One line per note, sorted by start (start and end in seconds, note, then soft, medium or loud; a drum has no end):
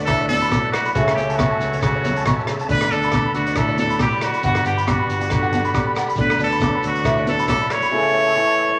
0.00 0.53 D2 medium
0.00 0.92 D3 medium
0.00 0.50 F#3 medium
0.00 0.93 B3 medium
0.00 0.93 D4 medium
0.00 0.28 F#4 medium
0.00 0.94 D5 medium
0.00 0.94 F#5 medium
0.00 0.94 B5 medium
0.05 0.92 A2 medium
0.05 0.27 A4 loud
0.05 kick medium
0.05 cross-stick medium
0.05 closed hi-hat soft
0.05 muted conga soft
0.05 low agogo medium
0.05 shekere medium
0.21 0.27 D5 medium
0.21 shekere soft
0.28 0.95 F#4 medium
0.28 0.69 A4 loud
0.28 0.38 D5 medium
0.28 closed hi-hat medium
0.28 high conga medium
0.28 shekere medium
0.41 0.48 B5 medium
0.41 closed hi-hat soft
0.51 0.93 F#3 medium
0.51 0.59 D6 medium
0.51 kick medium
0.51 cross-stick medium
0.51 closed hi-hat soft
0.51 high conga medium
0.51 low agogo medium
0.51 shekere medium
0.72 0.93 F#4 medium
0.72 0.81 D5 medium
0.72 cross-stick medium
0.72 closed hi-hat soft
0.72 low agogo medium
0.72 shekere medium
0.85 0.92 B5 medium
0.85 closed hi-hat soft
0.85 shekere soft
0.94 1.12 C#2 medium
0.94 1.39 C#3 medium
0.94 2.68 A3 medium
0.94 1.14 F#4 medium
0.94 2.67 C#5 medium
0.94 1.03 C#5 medium
0.94 2.67 E5 medium
0.94 2.67 A5 medium
0.94 kick medium
0.94 closed hi-hat soft
0.94 muted conga soft
0.94 shekere loud
1.08 1.14 A4 medium
1.08 cross-stick medium
1.08 low agogo medium
1.15 1.50 C#2 medium
1.15 2.04 C#4 medium
1.15 1.37 G4 medium
1.15 1.24 C#5 medium
1.15 closed hi-hat soft
1.15 muted conga soft
1.15 shekere medium
1.30 1.36 A5 medium
1.30 closed hi-hat soft
1.30 shekere soft
1.36 1.81 F#4 medium
1.36 1.46 C#6 medium
1.36 muted steel-string acoustic guitar stroke medium
1.36 kick medium
1.36 cross-stick medium
1.36 closed hi-hat soft
1.36 low agogo medium
1.40 high conga medium
1.40 shekere medium
1.52 1.57 A5 medium
1.52 shekere soft
1.60 2.28 C#2 medium
1.60 closed hi-hat soft
1.60 muted conga soft
1.60 shekere medium
1.73 1.79 C#5 medium
1.73 closed hi-hat soft
1.82 2.25 C#3 medium
1.82 2.43 F#4 medium
1.82 kick medium
1.82 cross-stick medium
1.82 closed hi-hat soft
1.82 muted conga soft
1.82 low agogo medium
1.82 shekere medium
1.95 2.01 C#5 medium
1.95 shekere soft
2.04 2.70 C#4 medium
2.04 2.12 C#5 medium
2.04 closed hi-hat soft
2.04 high conga medium
2.04 low conga medium
2.04 shekere medium
2.16 2.23 A5 medium
2.16 closed hi-hat soft
2.25 2.46 B2 medium
2.25 2.34 C#6 medium
2.25 kick medium
2.25 cross-stick medium
2.25 closed hi-hat soft
2.25 high conga medium
2.25 low agogo medium
2.25 shekere loud
2.40 2.45 A5 medium
2.40 shekere soft
2.46 2.68 C#3 medium
2.46 2.56 C#5 medium
2.46 cross-stick medium
2.46 closed hi-hat soft
2.46 low agogo medium
2.46 shekere medium
2.59 2.67 A5 medium
2.59 closed hi-hat soft
2.59 shekere soft
2.68 2.86 D2 medium
2.68 4.41 D3 medium
2.68 4.45 B3 medium
2.68 2.93 B4 loud
2.68 2.78 D5 medium
2.68 4.43 D5 medium
2.68 4.43 F#5 medium
2.68 7.89 B5 medium
2.68 kick medium
2.68 closed hi-hat soft
2.68 muted conga soft
2.68 shekere loud
2.81 2.89 D5 medium
2.81 cross-stick medium
2.81 low agogo medium
2.91 3.26 D2 medium
2.91 4.66 D4 medium
2.91 3.34 A4 medium
2.91 3.00 D5 medium
2.91 closed hi-hat soft
2.91 muted conga soft
2.91 shekere medium
3.03 3.10 B5 medium
3.03 closed hi-hat soft
3.03 shekere soft
3.12 3.21 D6 medium
3.12 kick medium
3.12 cross-stick medium
3.12 closed hi-hat soft
3.12 high conga medium
3.12 low agogo medium
3.12 shekere loud
3.26 3.31 B5 medium
3.34 4.02 D2 medium
3.34 3.58 F#4 medium
3.34 closed hi-hat soft
3.34 muted conga soft
3.34 shekere medium
3.46 3.53 D5 medium
3.46 closed hi-hat soft
3.56 4.41 A2 medium
3.56 3.78 A4 loud
3.56 kick medium
3.56 cross-stick medium
3.56 closed hi-hat soft
3.56 muted conga soft
3.56 low agogo medium
3.56 shekere loud
3.68 3.75 D5 medium
3.68 shekere soft
3.78 6.18 F#4 medium
3.78 3.99 A4 medium
3.78 3.86 D5 medium
3.78 closed hi-hat soft
3.78 high conga medium
3.78 shekere medium
3.90 3.96 B5 medium
3.90 closed hi-hat soft
3.99 4.47 F#3 medium
3.99 4.26 G4 medium
3.99 4.08 D6 medium
3.99 kick medium
3.99 cross-stick medium
3.99 closed hi-hat soft
3.99 high conga medium
3.99 low agogo medium
3.99 shekere medium
4.13 4.18 B5 medium
4.21 4.45 F#4 medium
4.21 4.30 D5 medium
4.21 cross-stick medium
4.21 closed hi-hat soft
4.21 low agogo medium
4.21 shekere medium
4.34 4.40 B5 medium
4.34 closed hi-hat soft
4.34 shekere soft
4.43 4.60 G1 medium
4.43 6.16 G2 medium
4.43 6.16 B3 medium
4.43 4.65 F#4 medium
4.43 6.17 D5 medium
4.43 4.51 F#5 medium
4.43 7.90 F#5 medium
4.43 kick medium
4.43 closed hi-hat soft
4.43 muted conga soft
4.43 shekere loud
4.55 cross-stick medium
4.55 low agogo medium
4.64 4.98 G1 medium
4.64 5.51 D4 medium
4.64 4.91 G4 medium
4.64 4.73 F#5 medium
4.64 closed hi-hat medium
4.64 muted conga soft
4.64 shekere medium
4.78 4.83 B5 medium
4.78 closed hi-hat soft
4.78 shekere soft
4.87 5.73 G3 medium
4.87 5.32 F#4 medium
4.87 4.95 D6 medium
4.87 kick medium
4.87 cross-stick medium
4.87 closed hi-hat soft
4.87 high conga medium
4.87 low agogo medium
4.87 shekere medium
5.00 5.05 B5 medium
5.08 5.76 G1 medium
5.08 closed hi-hat soft
5.08 muted conga soft
5.08 shekere medium
5.21 muted clean electric guitar stroke medium
5.21 closed hi-hat soft
5.30 6.15 D3 medium
5.30 5.93 F#4 medium
5.30 kick medium
5.30 cross-stick medium
5.30 closed hi-hat soft
5.30 muted conga soft
5.30 low agogo medium
5.30 shekere medium
5.43 5.49 F#5 medium
5.43 shekere soft
5.53 6.15 D4 medium
5.53 5.61 F#5 medium
5.53 closed hi-hat soft
5.53 high conga medium
5.53 low conga medium
5.53 shekere medium
5.65 5.71 B5 medium
5.65 closed hi-hat soft
5.74 6.15 G3 medium
5.74 5.82 D6 medium
5.74 kick medium
5.74 cross-stick medium
5.74 closed hi-hat soft
5.74 high conga medium
5.74 low agogo medium
5.74 shekere medium
5.87 5.93 B5 medium
5.95 6.04 F#5 medium
5.95 cross-stick medium
5.95 closed hi-hat soft
5.95 low agogo medium
5.95 shekere medium
6.07 6.14 B5 medium
6.07 closed hi-hat soft
6.07 shekere soft
6.15 6.34 D2 medium
6.15 7.90 D3 medium
6.15 7.90 B3 medium
6.15 6.25 D5 medium
6.15 kick medium
6.15 closed hi-hat soft
6.15 shekere medium
6.20 6.39 B4 medium
6.20 7.91 D5 medium
6.20 muted conga soft
6.30 6.36 D5 medium
6.30 cross-stick medium
6.30 low agogo medium
6.38 6.73 D2 medium
6.38 7.90 D4 medium
6.38 6.48 D5 medium
6.38 closed hi-hat soft
6.38 muted conga soft
6.38 shekere medium
6.44 6.82 A4 medium
6.50 6.58 B5 medium
6.50 closed hi-hat soft
6.50 shekere soft
6.60 7.47 F#3 medium
6.60 6.70 D6 medium
6.60 kick medium
6.60 cross-stick medium
6.60 closed hi-hat soft
6.60 high conga medium
6.60 low agogo medium
6.60 shekere medium
6.75 6.80 B5 medium
6.83 7.51 D2 medium
6.83 closed hi-hat soft
6.83 muted conga soft
6.83 shekere medium
6.87 7.26 F#4 medium
6.95 closed hi-hat soft
7.04 7.90 A2 medium
7.04 kick medium
7.04 cross-stick medium
7.04 closed hi-hat soft
7.04 muted conga soft
7.04 low agogo medium
7.04 shekere medium
7.17 7.23 D5 medium
7.17 shekere soft
7.26 7.92 F#4 medium
7.26 7.48 A4 medium
7.26 7.35 B4 medium
7.26 closed hi-hat soft
7.26 high conga medium
7.26 shekere medium
7.39 7.45 B5 medium
7.39 closed hi-hat soft
7.47 7.89 F#3 medium
7.47 7.73 A4 medium
7.47 7.57 D6 medium
7.47 kick medium
7.47 cross-stick medium
7.47 closed hi-hat soft
7.47 high conga medium
7.47 low agogo medium
7.47 shekere medium
7.61 7.67 B5 medium
7.70 8.79 C#5 loud
7.70 7.78 D5 medium
7.70 cross-stick medium
7.70 closed hi-hat soft
7.70 low agogo medium
7.70 shekere medium
7.82 7.89 B5 medium
7.82 closed hi-hat medium
7.82 shekere soft
7.92 8.36 C#3 medium
7.92 8.35 E3 medium
7.92 8.79 A3 medium
7.92 8.13 C#4 medium
7.92 8.79 A4 medium
7.92 8.00 C#5 medium
7.92 8.79 C#5 medium
7.92 8.79 E5 soft
7.92 8.79 A5 medium
8.05 8.11 C#5 medium
8.14 8.21 C#5 medium
8.14 muted steel-string acoustic guitar stroke medium
8.27 8.32 A5 medium
8.36 8.79 E3 medium
8.36 8.43 C#6 medium
8.48 8.53 A5 medium
8.69 8.75 C#5 medium